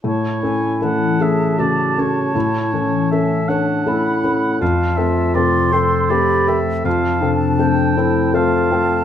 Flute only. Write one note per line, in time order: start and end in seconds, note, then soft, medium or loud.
0.04 0.40 A5 soft
0.43 0.83 G#5 soft
0.82 3.89 A5 soft
3.88 4.60 B5 soft
4.60 5.36 A5 soft
5.35 6.12 C6 soft
6.10 6.59 B5 soft
6.86 8.31 A5 soft
8.35 9.04 A5 soft